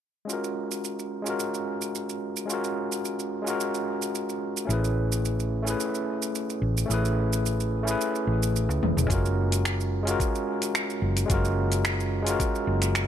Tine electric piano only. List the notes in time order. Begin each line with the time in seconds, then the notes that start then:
0.25 G#3 C#4
0.29 F4 F#4 A#4
1.22 G#3 C#4 F4
1.28 F#4 A#4
2.46 G#3 C#4 F4
2.51 F#4 A#4
3.42 G#3 C#4 F4
3.48 F#4 A#4
4.65 A3 C#4 E4
4.71 G#4 B4
5.62 A3 C#4 E4
5.68 G#4 B4
6.86 A3 C#4 E4
6.92 G#4 B4
7.83 A3 C#4 E4
7.89 G#4 B4
9.06 G#3 C#4 F4
9.12 F#4 A#4
10.03 G#3 C#4 F4
10.09 F#4 A#4
11.26 G#3 C#4 F4
11.32 F#4 A#4
12.22 G#3 C#4
12.27 F4 F#4 A#4